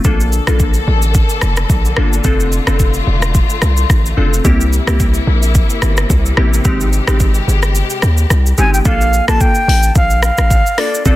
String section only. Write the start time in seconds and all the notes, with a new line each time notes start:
0.04 D3 A#3 A4
2.25 A3 F4
4.45 C3 A#3 E4
6.65 G#3 G4